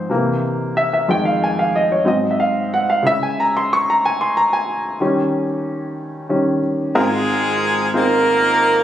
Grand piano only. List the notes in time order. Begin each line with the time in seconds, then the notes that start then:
Already playing: G#2 F3 C4 C5
0.10 C3 E3 A#3
0.77 E5
0.93 E5
1.08 F2 D#3 G#3 G5
1.25 F5
1.44 G#5
1.59 F5
1.76 D#5
1.92 C#5
2.05 G#2 F#3 C4 D#5
2.31 E5
2.40 F5
2.74 F#5
2.90 F5
3.03 C#3 G#3 E4 E5
3.23 G#5
3.40 A#5
3.57 C6
3.73 C#6
3.90 A#5
4.05 G#5
4.21 C6
4.37 A#5
4.53 G#5
5.00 D#3 G3 C#4
6.29 D#3 G3 C#4
6.95 G#1 G#2 C4 D#4 F4 G#4 A#4
7.94 C4 D#4 F4 G#4 C5